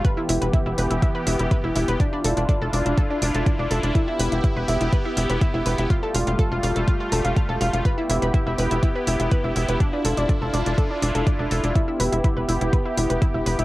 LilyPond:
<<
  \new Staff \with { instrumentName = "Synth arpeggio sound" } { \time 4/4 \key e \phrygian \tempo 4 = 123 <b' b''>16 <e' e''>16 <e' e''>16 <b' b''>16 <e' e''>16 <e' e''>16 <b' b''>16 <e' e''>16 <e' e''>16 <b' b''>16 <e' e''>16 <e' e''>16 <b' b''>16 <e' e''>16 <e' e''>16 <b' b''>16 | <d' d''>16 <d' d''>16 <a' a''>16 <d' d''>16 <d' d''>16 <a' a''>16 <d' d''>16 <d' d''>16 <a' a''>16 <d' d''>16 <d' d''>16 <a' a''>16 <d' d''>16 <d' d''>16 <a' a''>16 <d' d''>16 | <e' e''>16 <e' e''>16 <b' b''>16 <e' e''>16 <e' e''>16 <b' b''>16 <e' e''>16 <e' e''>16 <b' b''>16 <e' e''>16 <e' e''>16 <b' b''>16 <e' e''>16 <e' e''>16 <b' b''>16 <e' e''>16 | <f' f''>16 <a' a''>16 <f' f''>16 <f' f''>16 <a' a''>16 <f' f''>16 <f' f''>16 <a' a''>16 <f' f''>16 <f' f''>16 <a' a''>16 <f' f''>16 <f' f''>16 <a' a''>16 <f' f''>16 <f' f''>16 |
<b' b''>16 <e' e''>16 <e' e''>16 <b' b''>16 <e' e''>16 <e' e''>16 <b' b''>16 <e' e''>16 <e' e''>16 <b' b''>16 <e' e''>16 <e' e''>16 <b' b''>16 <e' e''>16 <e' e''>16 <b' b''>16 | <d' d''>16 <d' d''>16 <a' a''>16 <d' d''>16 <d' d''>16 <a' a''>16 <d' d''>16 <d' d''>16 <a' a''>16 <d' d''>16 <d' d''>16 <a' a''>16 <d' d''>16 <d' d''>16 <a' a''>16 <d' d''>16 | <e' e''>16 <e' e''>16 <b' b''>16 <e' e''>16 <e' e''>16 <b' b''>16 <e' e''>16 <e' e''>16 <b' b''>16 <e' e''>16 <e' e''>16 <b' b''>16 <e' e''>16 <e' e''>16 <b' b''>16 <e' e''>16 | }
  \new Staff \with { instrumentName = "Analog synth pad" } { \time 4/4 \key e \phrygian << { <b g'>1 | <d' f'>1 | <b g'>1 | <a f'>1 |
<b g'>1 | <d' f'>1 | <b g'>1 | } \\ { e1 | e'1~ | e'1 | g1 |
e'1~ | e'1~ | e'1 | } >> }
  \new Staff \with { instrumentName = "Analog synth bass" } { \clef bass \time 4/4 \key e \phrygian r8 e,,16 e,,16 r16 e,,16 e,,16 e,,16 r8 e,,16 e,,16 r16 e,,16 e,,16 e,,16 | r8 e,,16 e,,16 r16 e,,16 e,,16 e,,16 r8 e,,16 e,,16 r16 e,,16 e,,16 e,,16 | r8 e,,16 e,,16 r16 e,,16 e,,16 e,,16 r8 e,,16 e,,16 r16 e,,16 e,,16 e,,16 | r8 e,,16 e,,16 r16 e,,16 e,,16 e,,16 r8 e,,16 e,,16 r16 e,,16 e,,16 e,,16 |
r8 e,,16 e,,16 r16 e,,16 e,,16 e,,16 r8 e,,16 e,,16 r16 e,,16 e,,16 e,,16 | r8 e,,16 e,,16 r16 e,,16 e,,16 e,,16 r8 e,,16 e,,16 r16 e,,16 e,,16 e,,16 | r8 e,,16 e,,16 r16 e,,16 e,,16 e,,16 r8 e,,16 e,,16 r16 e,,16 e,,16 e,,16 | }
  \new DrumStaff \with { instrumentName = "Drums" } \drummode { \time 4/4 <hh bd>8 hho16 hh16 <hh bd>8 hho16 hh16 <hh bd>8 hho16 hh16 <hh bd>8 hho16 hh16 | <hh bd>8 hho16 hh16 <hh bd>8 hho16 hh16 <hh bd>8 hho16 hh16 <hh bd>8 hho16 hh16 | <hh bd>8 hho16 hh16 <hh bd>8 hho16 hh16 <hh bd>8 hho16 hh16 <hh bd>8 hho16 hh16 | <hh bd>8 hho16 hh16 <hh bd>8 hho16 hh16 <hh bd>8 hho16 hh16 <hh bd>8 hho16 hh16 |
<hh bd>8 hho16 hh16 <hh bd>8 hho16 hh16 <hh bd>8 hho16 hh16 <hh bd>8 hho16 hh16 | <hh bd>8 hho16 hh16 <hh bd>8 hho16 hh16 <hh bd>8 hho16 hh16 <hh bd>8 hho16 hh16 | <hh bd>8 hho16 hh16 <hh bd>8 hho16 hh16 <hh bd>8 hho16 hh16 <hh bd>8 hho16 hh16 | }
>>